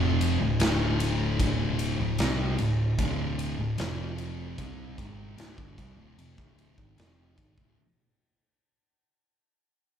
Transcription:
0.00 0.37 F1 medium
0.00 0.39 F2 loud
0.00 0.39 C3 medium
0.00 0.39 F3 loud
0.21 ride medium
0.40 0.59 D1 medium
0.40 0.59 D2 medium
0.40 0.59 A2 medium
0.60 1.36 D1 loud
0.60 1.38 D2 medium
0.60 1.38 A2 loud
0.60 1.39 D3 medium
0.60 snare loud
0.60 ride loud
1.00 ride medium
1.39 1.95 D1 loud
1.39 1.98 D2 medium
1.39 1.98 A2 loud
1.39 1.98 D3 loud
1.39 kick loud
1.39 ride loud
1.79 ride medium
1.99 2.18 D1 medium
1.99 2.19 D2 medium
1.99 2.20 A2 medium
2.19 2.56 C2 medium
2.19 2.58 C3 medium
2.19 2.58 G3 loud
2.19 2.58 C4 loud
2.19 snare loud
2.19 ride medium
2.58 2.96 D1 medium
2.58 2.91 D2 medium
2.58 2.92 A2 medium
2.58 ride medium
2.99 3.55 D1 medium
2.99 3.58 D2 loud
2.99 3.58 A2 loud
2.99 3.58 D3 loud
2.99 kick loud
2.99 ride medium
3.39 ride medium
3.59 3.77 D1 medium
3.59 3.78 D2 medium
3.59 3.79 A2 medium
3.78 4.54 F1 loud
3.78 4.57 F2 loud
3.78 4.56 C3 loud
3.78 4.58 F3 medium
3.78 snare loud
3.78 ride medium
4.18 ride medium
4.57 4.95 C2 loud
4.57 4.96 C3 loud
4.57 4.97 G3 loud
4.57 4.97 C4 loud
4.57 kick loud
4.57 ride medium
4.98 5.35 G#1 medium
4.98 5.37 G#2 loud
4.98 5.37 D#3 medium
4.98 5.37 G#3 medium
4.98 kick loud
4.98 ride medium
5.37 5.56 D1 loud
5.37 5.56 D2 medium
5.37 5.57 A2 loud
5.37 snare loud
5.37 ride medium
5.57 5.77 G1 medium
5.57 5.76 G2 medium
5.57 5.77 D3 medium
5.57 kick loud
5.77 5.96 C2 medium
5.77 5.96 C3 medium
5.77 5.97 G3 loud
5.77 kick loud
5.77 ride medium
5.97 6.16 D1 medium
5.97 6.16 D2 medium
5.97 6.16 A2 loud
6.17 6.36 F1 medium
6.17 6.36 F2 medium
6.17 6.37 C3 loud
6.17 ride loud
6.37 6.75 D1 medium
6.37 6.76 D2 loud
6.37 6.76 A2 loud
6.37 6.77 D3 loud
6.37 kick loud
6.58 ride medium
6.77 6.96 G#1 medium
6.77 6.96 G#2 medium
6.77 6.96 D#3 loud
6.77 kick loud
6.96 7.34 F1 medium
6.96 7.36 F2 medium
6.96 7.36 C3 loud
6.96 7.36 F3 loud
6.96 snare loud
6.96 ride medium
7.37 7.56 G#1 medium
7.37 7.56 G#2 medium
7.37 7.56 D#3 loud
7.37 kick loud
7.37 ride medium
7.57 7.76 D1 medium
7.57 7.76 D2 medium
7.57 7.76 A2 loud
7.57 kick loud

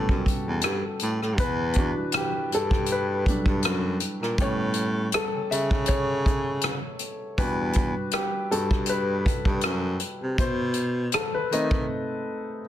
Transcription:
0.00 1.41 G3 soft
0.00 1.40 B3 soft
0.00 1.40 C#4 medium
0.00 1.40 F#4 medium
0.00 1.40 G4 medium
0.00 1.40 A4 loud
0.09 0.25 F#2 medium
0.09 kick medium
0.26 kick medium
0.26 closed hi-hat medium
0.47 0.63 E2 medium
0.61 0.82 G2 medium
0.61 cross-stick loud
0.61 closed hi-hat medium
0.99 1.20 A2 medium
0.99 closed hi-hat medium
1.22 1.40 A2 medium
1.22 cross-stick soft
1.38 1.92 E2 medium
1.38 2.16 B4 loud
1.38 kick loud
1.38 closed hi-hat medium
1.73 kick medium
1.73 closed hi-hat medium
1.78 4.36 E3 soft
1.78 3.28 D4 medium
1.78 4.35 F#4 soft
1.98 2.04 G2 soft
2.12 cross-stick loud
2.12 closed hi-hat medium
2.17 2.54 G4 medium
2.52 3.23 G2 medium
2.52 2.88 A4 medium
2.52 closed hi-hat medium
2.71 kick medium
2.71 cross-stick soft
2.86 closed hi-hat medium
2.92 3.99 B4 medium
3.26 3.35 G2 soft
3.26 3.61 F#3 soft
3.26 3.61 G3 soft
3.26 3.61 D4 soft
3.26 kick medium
3.26 closed hi-hat medium
3.46 3.62 G2 medium
3.46 kick medium
3.63 3.98 F#2 medium
3.63 cross-stick loud
3.63 closed hi-hat medium
4.00 closed hi-hat medium
4.22 4.37 A#2 medium
4.22 cross-stick soft
4.38 5.10 A2 medium
4.38 4.90 G3 medium
4.38 4.90 B3 soft
4.38 4.91 C#4 medium
4.38 5.11 C#5 medium
4.38 kick loud
4.38 closed hi-hat medium
4.74 closed hi-hat medium
5.12 5.53 A4 medium
5.12 cross-stick loud
5.12 closed hi-hat medium
5.34 5.41 C#3 soft
5.51 6.80 C#3 medium
5.51 5.89 E5 medium
5.51 closed hi-hat medium
5.71 kick medium
5.86 6.97 C#5 medium
5.86 kick medium
5.86 closed hi-hat medium
6.26 kick medium
6.26 closed hi-hat medium
6.61 cross-stick medium
6.61 closed hi-hat medium
6.99 closed hi-hat medium
7.38 7.92 E2 loud
7.38 7.90 G3 soft
7.38 7.90 D4 soft
7.38 7.91 F#4 medium
7.38 8.16 B4 loud
7.38 kick medium
7.38 closed hi-hat medium
7.73 kick medium
7.73 closed hi-hat medium
7.97 8.04 G2 soft
8.11 8.52 G4 medium
8.11 cross-stick loud
8.11 closed hi-hat medium
8.51 9.22 G2 medium
8.51 8.85 G3 soft
8.51 8.86 D4 soft
8.51 8.86 F#4 soft
8.51 8.86 A4 medium
8.51 closed hi-hat medium
8.71 kick medium
8.71 cross-stick soft
8.86 9.97 B4 medium
8.86 closed hi-hat medium
9.26 9.35 G2 soft
9.26 kick medium
9.26 closed hi-hat medium
9.45 9.62 G2 medium
9.45 kick medium
9.61 9.98 F#2 medium
9.61 cross-stick loud
9.61 closed hi-hat medium
10.00 closed hi-hat medium
10.23 10.38 C3 medium
10.38 11.10 B2 loud
10.38 11.16 C5 medium
10.38 kick loud
10.38 closed hi-hat medium
10.74 closed hi-hat medium
11.12 11.34 A4 medium
11.12 cross-stick loud
11.12 closed hi-hat medium
11.34 11.41 D#3 soft
11.34 11.52 B4 medium
11.52 11.85 D#3 medium
11.52 12.60 A3 soft
11.52 12.60 C4 soft
11.52 12.61 D#4 medium
11.52 12.68 D#5 medium
11.52 closed hi-hat medium
11.71 kick medium

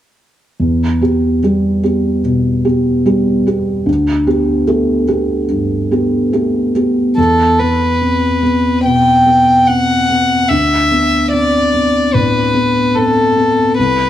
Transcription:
0.60 1.00 E2 soft
1.01 1.39 B3 soft
1.01 1.39 G4 soft
1.43 1.80 G3 soft
1.43 1.80 B3 soft
1.43 1.80 G4 soft
1.83 2.20 B3 soft
1.83 2.21 G4 soft
2.25 2.64 B2 soft
2.65 3.02 B3 soft
2.65 3.02 G4 soft
3.06 3.43 G3 soft
3.06 3.43 B3 soft
3.06 3.43 G4 soft
3.47 3.83 B3 soft
3.47 3.84 G4 soft
3.86 4.26 D2 soft
4.27 4.64 B3 soft
4.27 4.64 G4 soft
4.67 5.04 A3 soft
4.67 5.04 B3 soft
4.67 5.05 G4 soft
5.08 5.45 B3 soft
5.08 5.45 G4 soft
5.50 5.89 G2 soft
5.91 6.29 B3 soft
5.91 6.29 G4 soft
6.33 6.71 A3 soft
6.33 6.71 B3 soft
6.33 6.71 G4 soft
6.76 7.14 B3 soft
6.76 7.14 G4 soft
7.16 8.81 E2 soft
7.16 7.60 A4 medium
7.59 8.85 B4 soft
8.01 8.43 C4 soft
8.43 9.10 B3 soft
8.85 9.52 B2 soft
8.85 9.69 G5 soft
9.26 9.92 B3 soft
9.68 10.10 C4 soft
9.68 10.50 F#5 medium
10.10 10.50 B3 soft
10.49 12.10 D2 soft
10.49 11.32 E5 medium
10.91 11.57 B3 soft
11.32 11.74 C4 soft
11.32 12.16 D5 medium
11.74 12.39 B3 soft
12.14 12.79 A2 soft
12.14 12.97 B4 medium
12.55 13.20 B3 soft
12.95 13.37 C4 soft
12.95 13.77 A4 medium
13.37 13.78 B3 soft
13.77 14.10 C2 soft
13.77 14.10 B4 medium

